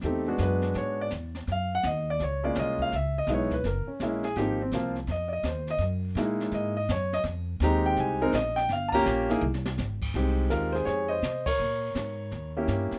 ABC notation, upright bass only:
X:1
M:4/4
L:1/8
Q:"Swing" 1/4=166
K:Fm
V:1 name="Upright bass" clef=bass
=E,,2 ^F,,2 ^G,,2 E,,2 | _G,,2 E,,2 D,,2 C,,2 | D,,2 _C,,2 _G,,, z B,,,2 | A,,,2 C,,2 F,,2 E,,2 |
_G,,2 B,,2 A,,2 G,,2 | F,,2 E,,2 C,,2 B,,,2 | G,,,2 B,,,2 C,,2 A,,,2 | C,,2 E,,2 F,,2 C,2 |
B,,2 A,,2 E,,2 G,, z |]